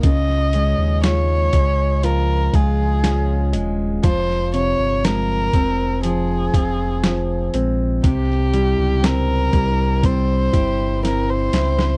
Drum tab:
HH |x-x-x-x-x-x-x-x-|x-x-x-x-x-x-x-x-|x-x-x-x-x-x-x-x-|
SD |-o--o-------o---|-o--o-------o---|-o--o-------o-oo|
BD |o-----o---o-----|o-----o---o-----|o-----o-o-o-----|